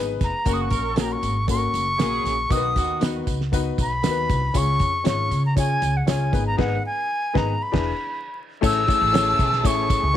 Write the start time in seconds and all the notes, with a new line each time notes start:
Already playing: G#1 B3 D#4 G#4 B4
0.21 F1 A#5, kick, snare, closed hi-hat, tambourine
0.45 F#1 C#3 A#3 C#4 F#4 A#4, kick, closed hi-hat, tambourine
0.53 D#6
0.62 C#6
0.70 A#1 F#3 C#4 A#4, kick, closed hi-hat, tambourine
0.96 A#3 C#4 F#4 A#4, snare, closed hi-hat, tambourine
1.00 A#5
1.12 C#6
1.22 G#1, closed hi-hat, tambourine
1.47 A#3 C#4 F#4 A4 C#6, kick, closed hi-hat, tambourine
1.55 A#4
1.74 F#1, closed hi-hat, tambourine
1.98 A#1 C#3 A#3 C#4 F#4 G#4 A#4, snare, closed hi-hat, tambourine
2.24 A#1, snare, closed hi-hat, tambourine
2.49 B1 D#3 B3 D#4 F#4 A#4 D#6, kick, closed hi-hat, tambourine
2.57 B4
2.76 D#2 D#3 B3 F#4, kick, closed hi-hat, tambourine
3.00 B3 D#4 F#4 B4, snare, closed hi-hat, tambourine
3.27 C#2, kick, closed hi-hat, tambourine
3.41 snare
3.52 B3 D#4 F#4 B4, kick, closed hi-hat, tambourine
3.78 B1 B5, kick, closed hi-hat, tambourine
4.03 D#2 B3 D#4 F#4 A#4, snare, closed hi-hat, tambourine
4.11 B4
4.29 C2, kick, closed hi-hat, tambourine
4.54 C#2 C#4 F4 G#4 C#5 C#6, kick, closed hi-hat, tambourine
4.79 F2, kick, closed hi-hat, tambourine
5.04 G#1 C#4 F4 G#4 C#5, snare, closed hi-hat, tambourine
5.09 C#6
5.31 C#3, closed hi-hat, tambourine
5.46 A#5
5.56 C#4 F4 G#4 C#5 G#5, kick, closed hi-hat, tambourine
5.82 C#2, closed hi-hat, tambourine
5.97 F#5
6.07 C#2 C#4 F4 G#4 C#5 G#5, snare, closed hi-hat, tambourine
6.32 G#1 B3 D#4 G#4 B4, kick, closed hi-hat, tambourine
6.47 A#5
6.57 G#1 B3 D#4 G#4 B4 F#5, kick, snare, crash
6.86 G#5
7.33 G#1 B3 D#4 G#4 B4, kick, snare
7.38 A#5
7.62 B5
7.72 E1 D4 E4 G#4 B4, kick, snare, crash
8.61 A1 E3 A3 C#4 E4 G#4 A4 C#5 A5, kick, crash, tambourine
8.65 E6
8.87 A3 C#4 E4 A4 C#5, kick, ride, tambourine
9.01 A1
9.12 A3 C#4 E4 C#5, snare, ride, tambourine
9.39 B1, kick, ride, tambourine
9.53 snare
9.63 A1 A3 C#4 E4 C#5 C#6, kick, ride, tambourine
9.90 kick, ride, tambourine
10.03 C#2
10.14 A3